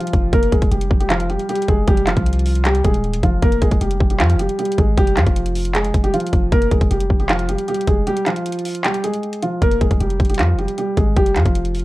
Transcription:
Already playing: grand piano F3 F4
0.01 closed hi-hat
0.07 closed hi-hat
0.13 808-style bass F1, kick, closed hi-hat
0.33 808-style bass F1, grand piano A#3 A#4, kick, closed hi-hat
0.43 closed hi-hat
0.52 808-style bass F1, grand piano G#3 G#4, kick, closed hi-hat
0.62 kick, closed hi-hat
0.71 808-style bass F1, grand piano G3 G4, closed hi-hat
0.81 closed hi-hat
0.91 808-style bass F1, kick
1.00 grand piano G3 G4, closed hi-hat
1.10 grand piano F3 F4, clap, closed hi-hat
1.20 closed hi-hat
1.29 grand piano G3 G4, closed hi-hat
1.39 closed hi-hat
1.49 grand piano G3 G4, closed hi-hat
1.55 closed hi-hat
1.62 closed hi-hat
1.68 808-style bass F1, grand piano G#3 G#4, kick, closed hi-hat
1.88 808-style bass F1, grand piano G3 G4, kick, closed hi-hat
1.97 closed hi-hat
2.07 grand piano F3 F4, clap, closed hi-hat
2.17 808-style bass C2, kick, closed hi-hat
2.26 closed hi-hat
2.33 closed hi-hat
2.39 closed hi-hat
2.46 open hi-hat
2.55 closed hi-hat
2.65 grand piano G3 G4, clap, closed hi-hat
2.75 closed hi-hat
2.84 808-style bass D#1, grand piano G#3 G#4, kick, closed hi-hat
2.94 closed hi-hat
3.04 closed hi-hat
3.13 closed hi-hat
3.23 808-style bass F1, grand piano F3 F4, kick, closed hi-hat
3.42 808-style bass F1, grand piano A#3 A#4, kick, closed hi-hat
3.52 closed hi-hat
3.62 808-style bass F1, grand piano G#3 G#4, kick, closed hi-hat
3.71 kick, closed hi-hat
3.81 808-style bass F1, grand piano G3 G4, closed hi-hat
3.91 closed hi-hat
4.00 808-style bass F1, kick
4.10 grand piano G3 G4, closed hi-hat
4.20 808-style bass F2, grand piano F3 F4, clap, closed hi-hat
4.30 closed hi-hat
4.35 808-style bass F1
4.39 grand piano G3 G4, closed hi-hat
4.49 closed hi-hat
4.59 grand piano G3 G4, closed hi-hat
4.65 closed hi-hat
4.72 closed hi-hat
4.78 808-style bass G#1, grand piano G#3 G#4, kick, closed hi-hat
4.97 808-style bass F1, grand piano G3 G4, kick, closed hi-hat
5.07 closed hi-hat
5.17 808-style bass F2, grand piano F3 F4, clap, closed hi-hat
5.26 808-style bass F1, kick, closed hi-hat
5.36 closed hi-hat
5.46 closed hi-hat
5.55 open hi-hat
5.65 closed hi-hat
5.75 grand piano G#3 G#4, clap, closed hi-hat
5.84 closed hi-hat
5.94 808-style bass F1, kick, closed hi-hat
6.04 grand piano G3 G4, closed hi-hat
6.13 grand piano F3 F4, closed hi-hat
6.20 closed hi-hat
6.26 closed hi-hat
6.33 808-style bass F1, kick, closed hi-hat
6.52 808-style bass F1, grand piano A#3 A#4, kick, closed hi-hat
6.62 closed hi-hat
6.71 808-style bass F1, grand piano G#3 G#4, kick, closed hi-hat
6.81 808-style bass F1, kick, closed hi-hat
6.91 808-style bass F1, grand piano G3 G4, closed hi-hat
7.00 closed hi-hat
7.10 808-style bass F1, kick
7.20 grand piano G3 G4, closed hi-hat
7.29 grand piano F3 F4, clap, closed hi-hat
7.39 closed hi-hat
7.49 grand piano G3 G4, closed hi-hat
7.59 closed hi-hat
7.68 grand piano G3 G4, closed hi-hat
7.75 closed hi-hat
7.81 closed hi-hat
7.88 808-style bass F1, grand piano G#3 G#4, kick, closed hi-hat
8.07 grand piano G3 G4, closed hi-hat
8.17 closed hi-hat
8.26 grand piano F3 F4, clap, closed hi-hat
8.36 closed hi-hat
8.46 closed hi-hat
8.52 closed hi-hat
8.59 closed hi-hat
8.65 open hi-hat
8.75 closed hi-hat
8.84 grand piano G3 G4, clap, closed hi-hat
8.94 closed hi-hat
9.04 grand piano G#3 G#4, closed hi-hat
9.13 closed hi-hat
9.23 closed hi-hat
9.33 closed hi-hat
9.42 grand piano F3 F4, closed hi-hat
9.62 808-style bass F1, grand piano A#3 A#4, kick, closed hi-hat
9.71 closed hi-hat
9.81 808-style bass F1, grand piano G#3 G#4, kick, closed hi-hat
9.91 808-style bass F1, kick, closed hi-hat
10.00 808-style bass F1, grand piano G3 G4, closed hi-hat
10.10 closed hi-hat
10.20 808-style bass F1, kick, closed hi-hat
10.25 closed hi-hat
10.29 grand piano G3 G4, closed hi-hat
10.34 closed hi-hat
10.39 808-style bass F2, grand piano F3 F4, clap, closed hi-hat
10.54 808-style bass F1
10.58 grand piano G3 G4, closed hi-hat
10.68 closed hi-hat
10.78 grand piano G3 G4, closed hi-hat
10.97 808-style bass G#1, grand piano G#3 G#4, kick, closed hi-hat
11.17 808-style bass F1, grand piano G3 G4, kick, closed hi-hat
11.26 closed hi-hat
11.36 808-style bass F2, grand piano F3 F4, clap, closed hi-hat
11.46 808-style bass F1, kick, closed hi-hat
11.55 closed hi-hat
11.65 closed hi-hat
11.75 closed hi-hat, open hi-hat
11.79 closed hi-hat

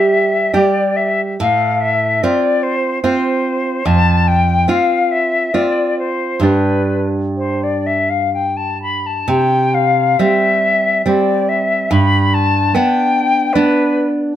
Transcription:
Already playing: nylon-string guitar G3 G4, flute E5
0.53 nylon-string guitar G3 G4, flute D5
0.96 flute E5
1.40 nylon-string guitar A2, flute F5
1.80 flute E5
2.22 nylon-string guitar C4 F4, flute D5
2.62 flute C5
3.02 nylon-string guitar C4 F4, flute C5
3.85 nylon-string guitar F2, flute A5
4.27 flute G5
4.68 nylon-string guitar C4 F4, flute F5
5.11 flute E5
5.53 nylon-string guitar C4 F4, flute D5
5.98 flute C5
6.40 nylon-string guitar G2 G3 D4, flute B4
7.37 flute C5
7.63 flute D5
7.86 flute E5
8.09 flute F5
8.33 flute G5
8.56 flute A5
8.82 flute B5
9.06 flute A5
9.28 nylon-string guitar C3, flute G5
9.74 flute F5
10.19 nylon-string guitar G3 C4, flute E5
11.05 nylon-string guitar G3 C4, flute D5
11.48 flute E5
11.90 nylon-string guitar G2, flute B5
12.33 flute A5
12.74 nylon-string guitar B3 D4, flute G5
13.53 nylon-string guitar B3 D4, flute B4

